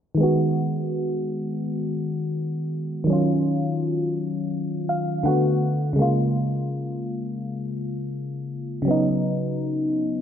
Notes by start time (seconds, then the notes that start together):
0.15 D#3 G#3
0.20 B3 F#4
3.04 D#3 F#3
3.10 C#4 F4
4.89 F5
5.23 D3 A3 B3 F#5
5.28 F#4
5.93 C#3 G#3
5.99 A#3 F4
8.82 C#3 F#3
8.88 B3 D#4